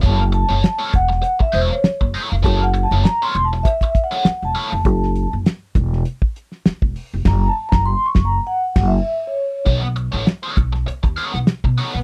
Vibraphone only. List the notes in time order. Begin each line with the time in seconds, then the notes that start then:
0.06 A5
0.34 A5
0.95 F#5
1.42 E5
1.54 C5
1.72 C#5
2.44 A5
2.63 F#5
2.83 A5
3.04 A#5
3.23 C6
3.45 A5
3.63 E5
4.04 F#5
4.45 A5
7.28 A#5
7.48 A5
7.69 A#5
7.86 C6
8.06 C#6
8.25 A#5
8.47 F#5
8.87 E5
9.27 C#5